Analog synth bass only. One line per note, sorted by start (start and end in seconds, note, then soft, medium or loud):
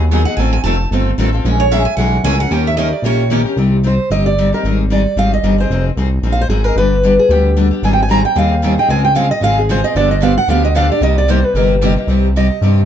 0.00 0.26 D#2 medium
0.37 0.59 A1 loud
0.63 0.86 F1 medium
0.90 1.13 G1 medium
1.18 1.40 A1 medium
1.44 1.87 A#1 loud
1.97 2.20 B1 medium
2.24 2.46 C#2 medium
2.51 2.93 D#2 loud
3.02 3.45 A#1 medium
3.56 3.99 C2 medium
4.10 4.53 G1 medium
4.63 5.06 G#1 medium
5.16 5.39 G#1 medium
5.43 5.66 G1 medium
5.69 5.91 F1 loud
5.97 6.19 C2 medium
6.22 6.45 A#1 medium
6.48 6.72 G#1 medium
6.75 7.18 G1 loud
7.29 7.72 D2 medium
7.82 8.25 G#1 medium
8.36 8.78 D#2 medium
8.88 9.31 C#2 medium
9.41 9.84 G#1 medium
9.95 10.38 G1 loud
10.48 10.91 D2 medium
11.01 11.44 C2 loud
11.54 11.97 G1 medium
12.07 12.50 C2 medium
12.61 12.85 G2 medium